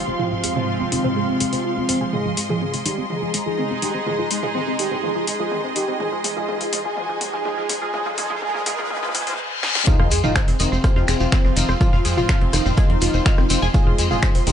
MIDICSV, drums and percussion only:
0, 0, Header, 1, 3, 480
1, 0, Start_track
1, 0, Key_signature, -4, "minor"
1, 0, Tempo, 483871
1, 193, Time_signature, 4, 2, 24, 8
1, 14404, End_track
2, 0, Start_track
2, 0, Title_t, "Shekere"
2, 9791, Note_on_c, 9, 82, 40
2, 9891, Note_off_c, 9, 82, 0
2, 10028, Note_on_c, 9, 82, 101
2, 10127, Note_off_c, 9, 82, 0
2, 10154, Note_on_c, 9, 82, 50
2, 10253, Note_off_c, 9, 82, 0
2, 10510, Note_on_c, 9, 82, 89
2, 10609, Note_off_c, 9, 82, 0
2, 10640, Note_on_c, 9, 82, 52
2, 10739, Note_off_c, 9, 82, 0
2, 10754, Note_on_c, 9, 82, 37
2, 10853, Note_off_c, 9, 82, 0
2, 10991, Note_on_c, 9, 82, 93
2, 11090, Note_off_c, 9, 82, 0
2, 11110, Note_on_c, 9, 82, 57
2, 11210, Note_off_c, 9, 82, 0
2, 11226, Note_on_c, 9, 82, 42
2, 11325, Note_off_c, 9, 82, 0
2, 11475, Note_on_c, 9, 82, 89
2, 11575, Note_off_c, 9, 82, 0
2, 11596, Note_on_c, 9, 82, 51
2, 11695, Note_off_c, 9, 82, 0
2, 11720, Note_on_c, 9, 82, 42
2, 11819, Note_off_c, 9, 82, 0
2, 11954, Note_on_c, 9, 82, 87
2, 12053, Note_off_c, 9, 82, 0
2, 12074, Note_on_c, 9, 82, 51
2, 12173, Note_off_c, 9, 82, 0
2, 12196, Note_on_c, 9, 82, 41
2, 12296, Note_off_c, 9, 82, 0
2, 12434, Note_on_c, 9, 82, 93
2, 12534, Note_off_c, 9, 82, 0
2, 12552, Note_on_c, 9, 82, 59
2, 12651, Note_off_c, 9, 82, 0
2, 12662, Note_on_c, 9, 82, 38
2, 12761, Note_off_c, 9, 82, 0
2, 12907, Note_on_c, 9, 82, 92
2, 13006, Note_off_c, 9, 82, 0
2, 13029, Note_on_c, 9, 82, 51
2, 13128, Note_off_c, 9, 82, 0
2, 13155, Note_on_c, 9, 82, 40
2, 13255, Note_off_c, 9, 82, 0
2, 13389, Note_on_c, 9, 82, 97
2, 13488, Note_off_c, 9, 82, 0
2, 13514, Note_on_c, 9, 82, 51
2, 13613, Note_off_c, 9, 82, 0
2, 13631, Note_on_c, 9, 82, 45
2, 13730, Note_off_c, 9, 82, 0
2, 13877, Note_on_c, 9, 82, 99
2, 13977, Note_off_c, 9, 82, 0
2, 13997, Note_on_c, 9, 82, 52
2, 14097, Note_off_c, 9, 82, 0
2, 14111, Note_on_c, 9, 82, 38
2, 14210, Note_off_c, 9, 82, 0
2, 14352, Note_on_c, 9, 82, 99
2, 14404, Note_off_c, 9, 82, 0
2, 14404, End_track
3, 0, Start_track
3, 0, Title_t, "Drums"
3, 193, Note_on_c, 9, 45, 71
3, 292, Note_off_c, 9, 45, 0
3, 433, Note_on_c, 9, 46, 103
3, 532, Note_off_c, 9, 46, 0
3, 554, Note_on_c, 9, 45, 83
3, 654, Note_off_c, 9, 45, 0
3, 913, Note_on_c, 9, 46, 109
3, 1012, Note_off_c, 9, 46, 0
3, 1035, Note_on_c, 9, 45, 76
3, 1134, Note_off_c, 9, 45, 0
3, 1393, Note_on_c, 9, 46, 104
3, 1492, Note_off_c, 9, 46, 0
3, 1514, Note_on_c, 9, 46, 59
3, 1614, Note_off_c, 9, 46, 0
3, 1873, Note_on_c, 9, 46, 108
3, 1972, Note_off_c, 9, 46, 0
3, 2113, Note_on_c, 9, 45, 71
3, 2113, Note_on_c, 9, 47, 46
3, 2212, Note_off_c, 9, 45, 0
3, 2212, Note_off_c, 9, 47, 0
3, 2353, Note_on_c, 9, 46, 101
3, 2452, Note_off_c, 9, 46, 0
3, 2474, Note_on_c, 9, 45, 86
3, 2574, Note_off_c, 9, 45, 0
3, 2593, Note_on_c, 9, 47, 50
3, 2692, Note_off_c, 9, 47, 0
3, 2714, Note_on_c, 9, 46, 59
3, 2814, Note_off_c, 9, 46, 0
3, 2833, Note_on_c, 9, 46, 108
3, 2932, Note_off_c, 9, 46, 0
3, 3072, Note_on_c, 9, 47, 50
3, 3171, Note_off_c, 9, 47, 0
3, 3312, Note_on_c, 9, 46, 103
3, 3411, Note_off_c, 9, 46, 0
3, 3552, Note_on_c, 9, 47, 55
3, 3651, Note_off_c, 9, 47, 0
3, 3792, Note_on_c, 9, 46, 104
3, 3892, Note_off_c, 9, 46, 0
3, 4032, Note_on_c, 9, 45, 76
3, 4032, Note_on_c, 9, 47, 57
3, 4131, Note_off_c, 9, 45, 0
3, 4131, Note_off_c, 9, 47, 0
3, 4272, Note_on_c, 9, 46, 97
3, 4371, Note_off_c, 9, 46, 0
3, 4393, Note_on_c, 9, 45, 90
3, 4493, Note_off_c, 9, 45, 0
3, 4512, Note_on_c, 9, 47, 62
3, 4611, Note_off_c, 9, 47, 0
3, 4752, Note_on_c, 9, 46, 105
3, 4852, Note_off_c, 9, 46, 0
3, 4874, Note_on_c, 9, 45, 81
3, 4974, Note_off_c, 9, 45, 0
3, 4992, Note_on_c, 9, 47, 65
3, 5092, Note_off_c, 9, 47, 0
3, 5232, Note_on_c, 9, 46, 93
3, 5331, Note_off_c, 9, 46, 0
3, 5472, Note_on_c, 9, 47, 71
3, 5571, Note_off_c, 9, 47, 0
3, 5712, Note_on_c, 9, 46, 103
3, 5812, Note_off_c, 9, 46, 0
3, 5952, Note_on_c, 9, 45, 78
3, 5952, Note_on_c, 9, 47, 74
3, 6051, Note_off_c, 9, 45, 0
3, 6051, Note_off_c, 9, 47, 0
3, 6193, Note_on_c, 9, 46, 96
3, 6193, Note_on_c, 9, 47, 73
3, 6292, Note_off_c, 9, 46, 0
3, 6292, Note_off_c, 9, 47, 0
3, 6314, Note_on_c, 9, 45, 94
3, 6414, Note_off_c, 9, 45, 0
3, 6433, Note_on_c, 9, 47, 78
3, 6532, Note_off_c, 9, 47, 0
3, 6555, Note_on_c, 9, 46, 56
3, 6654, Note_off_c, 9, 46, 0
3, 6673, Note_on_c, 9, 46, 104
3, 6673, Note_on_c, 9, 47, 84
3, 6772, Note_off_c, 9, 46, 0
3, 6772, Note_off_c, 9, 47, 0
3, 6913, Note_on_c, 9, 47, 81
3, 7012, Note_off_c, 9, 47, 0
3, 7152, Note_on_c, 9, 46, 100
3, 7152, Note_on_c, 9, 47, 83
3, 7252, Note_off_c, 9, 46, 0
3, 7252, Note_off_c, 9, 47, 0
3, 7393, Note_on_c, 9, 47, 90
3, 7492, Note_off_c, 9, 47, 0
3, 7633, Note_on_c, 9, 46, 101
3, 7633, Note_on_c, 9, 47, 90
3, 7732, Note_off_c, 9, 46, 0
3, 7732, Note_off_c, 9, 47, 0
3, 7873, Note_on_c, 9, 45, 84
3, 7873, Note_on_c, 9, 47, 86
3, 7972, Note_off_c, 9, 45, 0
3, 7972, Note_off_c, 9, 47, 0
3, 7994, Note_on_c, 9, 47, 84
3, 8093, Note_off_c, 9, 47, 0
3, 8112, Note_on_c, 9, 46, 101
3, 8112, Note_on_c, 9, 47, 91
3, 8212, Note_off_c, 9, 46, 0
3, 8212, Note_off_c, 9, 47, 0
3, 8234, Note_on_c, 9, 45, 98
3, 8234, Note_on_c, 9, 47, 81
3, 8333, Note_off_c, 9, 45, 0
3, 8333, Note_off_c, 9, 47, 0
3, 8353, Note_on_c, 9, 47, 95
3, 8452, Note_off_c, 9, 47, 0
3, 8474, Note_on_c, 9, 47, 85
3, 8574, Note_off_c, 9, 47, 0
3, 8593, Note_on_c, 9, 46, 104
3, 8593, Note_on_c, 9, 47, 100
3, 8692, Note_off_c, 9, 46, 0
3, 8692, Note_off_c, 9, 47, 0
3, 8715, Note_on_c, 9, 45, 87
3, 8715, Note_on_c, 9, 47, 87
3, 8814, Note_off_c, 9, 45, 0
3, 8814, Note_off_c, 9, 47, 0
3, 8833, Note_on_c, 9, 47, 98
3, 8894, Note_off_c, 9, 47, 0
3, 8894, Note_on_c, 9, 47, 90
3, 8955, Note_off_c, 9, 47, 0
3, 8955, Note_on_c, 9, 47, 91
3, 9014, Note_off_c, 9, 47, 0
3, 9014, Note_on_c, 9, 47, 87
3, 9073, Note_off_c, 9, 47, 0
3, 9073, Note_on_c, 9, 46, 104
3, 9073, Note_on_c, 9, 47, 103
3, 9134, Note_off_c, 9, 47, 0
3, 9134, Note_on_c, 9, 47, 90
3, 9172, Note_off_c, 9, 46, 0
3, 9195, Note_off_c, 9, 47, 0
3, 9195, Note_on_c, 9, 46, 59
3, 9195, Note_on_c, 9, 47, 92
3, 9254, Note_off_c, 9, 47, 0
3, 9254, Note_on_c, 9, 47, 91
3, 9294, Note_off_c, 9, 46, 0
3, 9353, Note_off_c, 9, 47, 0
3, 9554, Note_on_c, 9, 38, 84
3, 9653, Note_off_c, 9, 38, 0
3, 9675, Note_on_c, 9, 38, 100
3, 9774, Note_off_c, 9, 38, 0
3, 9792, Note_on_c, 9, 42, 89
3, 9793, Note_on_c, 9, 36, 116
3, 9793, Note_on_c, 9, 45, 82
3, 9892, Note_off_c, 9, 36, 0
3, 9892, Note_off_c, 9, 42, 0
3, 9892, Note_off_c, 9, 45, 0
3, 9915, Note_on_c, 9, 37, 52
3, 10014, Note_off_c, 9, 37, 0
3, 10033, Note_on_c, 9, 42, 70
3, 10033, Note_on_c, 9, 46, 105
3, 10132, Note_off_c, 9, 42, 0
3, 10133, Note_off_c, 9, 46, 0
3, 10155, Note_on_c, 9, 45, 99
3, 10254, Note_off_c, 9, 45, 0
3, 10273, Note_on_c, 9, 26, 127
3, 10273, Note_on_c, 9, 36, 117
3, 10273, Note_on_c, 9, 38, 119
3, 10273, Note_on_c, 9, 42, 86
3, 10372, Note_off_c, 9, 26, 0
3, 10372, Note_off_c, 9, 36, 0
3, 10372, Note_off_c, 9, 38, 0
3, 10372, Note_off_c, 9, 42, 0
3, 10394, Note_on_c, 9, 38, 54
3, 10395, Note_on_c, 9, 46, 58
3, 10494, Note_off_c, 9, 38, 0
3, 10495, Note_off_c, 9, 46, 0
3, 10513, Note_on_c, 9, 42, 67
3, 10513, Note_on_c, 9, 46, 110
3, 10612, Note_off_c, 9, 42, 0
3, 10613, Note_off_c, 9, 46, 0
3, 10753, Note_on_c, 9, 36, 120
3, 10753, Note_on_c, 9, 37, 53
3, 10753, Note_on_c, 9, 42, 86
3, 10852, Note_off_c, 9, 36, 0
3, 10852, Note_off_c, 9, 37, 0
3, 10852, Note_off_c, 9, 42, 0
3, 10875, Note_on_c, 9, 38, 48
3, 10974, Note_off_c, 9, 38, 0
3, 10993, Note_on_c, 9, 26, 64
3, 10993, Note_on_c, 9, 42, 67
3, 10993, Note_on_c, 9, 46, 101
3, 11092, Note_off_c, 9, 26, 0
3, 11092, Note_off_c, 9, 42, 0
3, 11092, Note_off_c, 9, 46, 0
3, 11233, Note_on_c, 9, 26, 124
3, 11233, Note_on_c, 9, 36, 121
3, 11233, Note_on_c, 9, 38, 115
3, 11233, Note_on_c, 9, 42, 87
3, 11332, Note_off_c, 9, 26, 0
3, 11332, Note_off_c, 9, 36, 0
3, 11332, Note_off_c, 9, 38, 0
3, 11332, Note_off_c, 9, 42, 0
3, 11355, Note_on_c, 9, 38, 49
3, 11454, Note_off_c, 9, 38, 0
3, 11473, Note_on_c, 9, 42, 72
3, 11473, Note_on_c, 9, 46, 105
3, 11572, Note_off_c, 9, 42, 0
3, 11572, Note_off_c, 9, 46, 0
3, 11595, Note_on_c, 9, 37, 51
3, 11595, Note_on_c, 9, 38, 51
3, 11694, Note_off_c, 9, 37, 0
3, 11694, Note_off_c, 9, 38, 0
3, 11713, Note_on_c, 9, 36, 125
3, 11713, Note_on_c, 9, 42, 88
3, 11713, Note_on_c, 9, 45, 81
3, 11812, Note_off_c, 9, 36, 0
3, 11812, Note_off_c, 9, 42, 0
3, 11812, Note_off_c, 9, 45, 0
3, 11835, Note_on_c, 9, 38, 60
3, 11934, Note_off_c, 9, 38, 0
3, 11953, Note_on_c, 9, 38, 56
3, 11953, Note_on_c, 9, 46, 104
3, 12052, Note_off_c, 9, 38, 0
3, 12052, Note_off_c, 9, 46, 0
3, 12075, Note_on_c, 9, 45, 92
3, 12174, Note_off_c, 9, 45, 0
3, 12192, Note_on_c, 9, 38, 118
3, 12192, Note_on_c, 9, 42, 88
3, 12193, Note_on_c, 9, 26, 120
3, 12193, Note_on_c, 9, 36, 118
3, 12292, Note_off_c, 9, 26, 0
3, 12292, Note_off_c, 9, 36, 0
3, 12292, Note_off_c, 9, 38, 0
3, 12292, Note_off_c, 9, 42, 0
3, 12314, Note_on_c, 9, 42, 44
3, 12413, Note_off_c, 9, 42, 0
3, 12432, Note_on_c, 9, 37, 51
3, 12432, Note_on_c, 9, 42, 68
3, 12432, Note_on_c, 9, 46, 108
3, 12531, Note_off_c, 9, 37, 0
3, 12531, Note_off_c, 9, 42, 0
3, 12531, Note_off_c, 9, 46, 0
3, 12554, Note_on_c, 9, 38, 41
3, 12554, Note_on_c, 9, 45, 82
3, 12653, Note_off_c, 9, 38, 0
3, 12653, Note_off_c, 9, 45, 0
3, 12672, Note_on_c, 9, 42, 91
3, 12673, Note_on_c, 9, 36, 124
3, 12771, Note_off_c, 9, 42, 0
3, 12772, Note_off_c, 9, 36, 0
3, 12794, Note_on_c, 9, 42, 44
3, 12893, Note_off_c, 9, 42, 0
3, 12913, Note_on_c, 9, 38, 54
3, 12913, Note_on_c, 9, 42, 65
3, 12913, Note_on_c, 9, 46, 108
3, 13012, Note_off_c, 9, 38, 0
3, 13012, Note_off_c, 9, 42, 0
3, 13012, Note_off_c, 9, 46, 0
3, 13034, Note_on_c, 9, 38, 54
3, 13134, Note_off_c, 9, 38, 0
3, 13152, Note_on_c, 9, 26, 121
3, 13152, Note_on_c, 9, 38, 112
3, 13152, Note_on_c, 9, 42, 84
3, 13153, Note_on_c, 9, 36, 127
3, 13251, Note_off_c, 9, 38, 0
3, 13251, Note_off_c, 9, 42, 0
3, 13252, Note_off_c, 9, 26, 0
3, 13252, Note_off_c, 9, 36, 0
3, 13274, Note_on_c, 9, 37, 50
3, 13275, Note_on_c, 9, 38, 56
3, 13374, Note_off_c, 9, 37, 0
3, 13374, Note_off_c, 9, 38, 0
3, 13392, Note_on_c, 9, 46, 110
3, 13393, Note_on_c, 9, 42, 70
3, 13492, Note_off_c, 9, 42, 0
3, 13492, Note_off_c, 9, 46, 0
3, 13515, Note_on_c, 9, 38, 58
3, 13614, Note_off_c, 9, 38, 0
3, 13633, Note_on_c, 9, 36, 126
3, 13633, Note_on_c, 9, 42, 87
3, 13633, Note_on_c, 9, 45, 74
3, 13732, Note_off_c, 9, 36, 0
3, 13732, Note_off_c, 9, 42, 0
3, 13732, Note_off_c, 9, 45, 0
3, 13873, Note_on_c, 9, 42, 70
3, 13873, Note_on_c, 9, 46, 107
3, 13972, Note_off_c, 9, 42, 0
3, 13972, Note_off_c, 9, 46, 0
3, 13995, Note_on_c, 9, 45, 92
3, 14094, Note_off_c, 9, 45, 0
3, 14112, Note_on_c, 9, 26, 120
3, 14112, Note_on_c, 9, 37, 50
3, 14113, Note_on_c, 9, 36, 125
3, 14113, Note_on_c, 9, 38, 113
3, 14113, Note_on_c, 9, 42, 90
3, 14212, Note_off_c, 9, 26, 0
3, 14212, Note_off_c, 9, 36, 0
3, 14212, Note_off_c, 9, 37, 0
3, 14212, Note_off_c, 9, 38, 0
3, 14212, Note_off_c, 9, 42, 0
3, 14234, Note_on_c, 9, 46, 66
3, 14235, Note_on_c, 9, 38, 53
3, 14334, Note_off_c, 9, 38, 0
3, 14334, Note_off_c, 9, 46, 0
3, 14353, Note_on_c, 9, 46, 116
3, 14354, Note_on_c, 9, 42, 71
3, 14404, Note_off_c, 9, 42, 0
3, 14404, Note_off_c, 9, 46, 0
3, 14404, End_track
0, 0, End_of_file